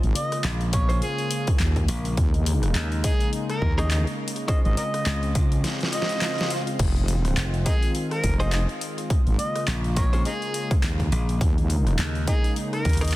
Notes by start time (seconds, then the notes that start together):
Already playing: C#3 G#3 A#3 F4
0.03 G#1, open hi-hat
0.15 D#5, open hi-hat
0.32 cross-stick, open hi-hat
0.44 A#1, clap, open hi-hat
0.61 open hi-hat
0.73 A#1 C#5, kick, open hi-hat
0.89 C#4 F4 G#4 C5, open hi-hat
1.02 G#4, open hi-hat
1.18 open hi-hat
1.31 open hi-hat
1.47 kick, open hi-hat
1.60 D#2, clap, open hi-hat
1.76 kick, open hi-hat
1.88 A#1, open hi-hat
2.05 open hi-hat
2.17 D#2 C#3 G#3 D#4, kick, open hi-hat
2.34 open hi-hat
2.46 open hi-hat
2.63 cross-stick, open hi-hat
2.75 D#2, clap, open hi-hat
2.92 open hi-hat
3.04 D#4 G#4, kick, open hi-hat
3.20 open hi-hat
3.33 open hi-hat
3.50 A#4, cross-stick, open hi-hat
3.62 D#2, kick
3.78 C#4 D#4 G#4 A#4 D#5, open hi-hat
3.91 D#5, clap, open hi-hat
4.07 open hi-hat
4.28 open hi-hat
4.36 open hi-hat
4.48 G#3 C4 C#4 F4 G#4 C5 D#5, kick, open hi-hat
4.65 G#1 D#5, open hi-hat
4.77 A#4 D#5, open hi-hat
4.94 cross-stick, open hi-hat
5.06 C#2, clap, open hi-hat
5.23 open hi-hat
5.35 C#2, kick, open hi-hat
5.52 open hi-hat
5.64 snare, open hi-hat, swell
5.81 snare, open hi-hat
5.93 D#5, open hi-hat
6.02 snare
6.09 open hi-hat
6.21 snare, clap, open hi-hat
6.38 snare, open hi-hat
6.50 open hi-hat
6.67 open hi-hat
6.79 F1 D#3 G#3, kick, open hi-hat, crash
6.96 open hi-hat
7.08 open hi-hat
7.25 cross-stick, open hi-hat
7.37 F1, clap, open hi-hat
7.54 open hi-hat
7.66 D#4 G#4, kick, open hi-hat
7.82 open hi-hat
7.95 open hi-hat
8.11 A#4, cross-stick, open hi-hat
8.24 F1, kick, open hi-hat
8.40 D#4 F4 G#4 C5 D#5, open hi-hat
8.52 D#5, clap, open hi-hat
8.69 open hi-hat
8.81 open hi-hat
8.98 open hi-hat
9.10 C#3 A#3, kick, open hi-hat
9.27 G#1, open hi-hat
9.39 D#5, open hi-hat
9.56 cross-stick, open hi-hat
9.68 A#1, clap, open hi-hat
9.84 open hi-hat
9.96 A#1 A#4 C#5, kick, open hi-hat
10.13 C#4 F4 G#4 C5, open hi-hat
10.25 D#4 G#4, open hi-hat
10.42 open hi-hat
10.54 open hi-hat
10.71 kick, open hi-hat
10.83 D#2, clap, open hi-hat
11.00 kick, open hi-hat
11.12 A#1, open hi-hat
11.29 open hi-hat
11.41 D#2 D#4, kick, open hi-hat
11.58 open hi-hat
11.70 open hi-hat
11.87 cross-stick, open hi-hat
11.99 D#2, clap, open hi-hat
12.15 open hi-hat
12.27 D#4 G#4, kick, open hi-hat
12.44 open hi-hat
12.56 open hi-hat
12.73 A#4, cross-stick, open hi-hat
12.85 D#2, kick, open hi-hat
12.89 open hi-hat
12.93 open hi-hat
12.97 A#4, open hi-hat
13.01 C#4 D#4 G#4 D#5, open hi-hat
13.05 open hi-hat
13.08 open hi-hat
13.11 open hi-hat